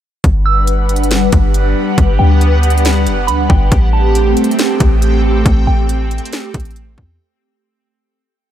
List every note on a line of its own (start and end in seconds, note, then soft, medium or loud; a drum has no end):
0.24 1.29 G1 loud
0.24 3.68 G3 medium
0.24 3.68 B3 medium
0.24 3.68 D4 medium
0.24 3.68 G4 medium
0.24 3.68 B4 medium
0.24 3.68 F#5 medium
0.24 kick loud
0.24 closed hi-hat medium
0.46 0.66 E6 medium
0.67 closed hi-hat medium
0.89 closed hi-hat medium
0.96 closed hi-hat medium
1.04 closed hi-hat medium
1.11 snare loud
1.11 closed hi-hat medium
1.32 1.74 G1 loud
1.32 kick loud
1.32 closed hi-hat medium
1.54 closed hi-hat medium
1.98 2.19 G1 loud
1.98 kick loud
1.98 closed hi-hat medium
2.19 3.08 D2 loud
2.19 2.40 G5 medium
2.41 closed hi-hat medium
2.63 closed hi-hat medium
2.70 closed hi-hat medium
2.78 closed hi-hat medium
2.85 snare loud
2.85 closed hi-hat medium
3.07 3.30 F#1 loud
3.07 closed hi-hat medium
3.27 3.49 D2 loud
3.27 3.48 B5 medium
3.27 closed hi-hat medium
3.49 3.71 G1 loud
3.49 3.70 G5 medium
3.49 kick loud
3.72 4.34 A1 loud
3.72 7.16 A3 medium
3.72 7.16 C4 medium
3.72 7.16 G4 medium
3.72 7.16 A4 medium
3.72 7.16 G5 medium
3.72 kick loud
3.72 closed hi-hat medium
3.93 4.14 A5 medium
4.15 closed hi-hat medium
4.37 closed hi-hat medium
4.44 closed hi-hat medium
4.51 closed hi-hat medium
4.59 snare loud
4.59 closed hi-hat medium
4.80 5.43 A1 loud
4.80 kick loud
4.80 closed hi-hat medium
5.02 closed hi-hat medium
5.46 5.67 A1 loud
5.46 kick loud
5.46 closed hi-hat medium
5.67 6.20 A1 loud
5.67 5.88 G5 medium
5.89 closed hi-hat medium
6.11 closed hi-hat soft
6.18 closed hi-hat medium
6.25 closed hi-hat medium
6.33 snare loud
6.33 closed hi-hat medium
6.54 6.96 A1 loud
6.54 kick loud
6.54 closed hi-hat medium
6.60 closed hi-hat medium
6.65 closed hi-hat medium
6.71 closed hi-hat soft
6.76 closed hi-hat medium
6.98 7.19 E2 loud
6.98 kick loud